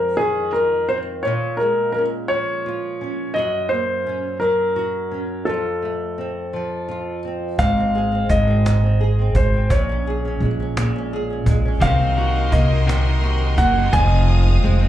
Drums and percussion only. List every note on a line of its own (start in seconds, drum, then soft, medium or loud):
7.59 cajon bass medium
7.94 cajon slap soft
8.29 cajon bass medium
8.66 cajon slap medium
9.00 cajon slap soft
9.35 cajon bass medium
9.70 cajon bass medium
10.05 cajon slap soft
10.41 cajon slap soft
10.77 cajon slap medium
11.11 cajon slap soft
11.46 cajon bass medium
11.82 cajon bass medium
12.17 cajon slap soft
12.52 cajon bass medium
12.89 cajon slap medium
13.23 cajon slap soft
13.58 cajon bass medium
13.93 cajon bass medium
14.28 cajon slap soft
14.64 cajon slap soft
14.65 cajon slap soft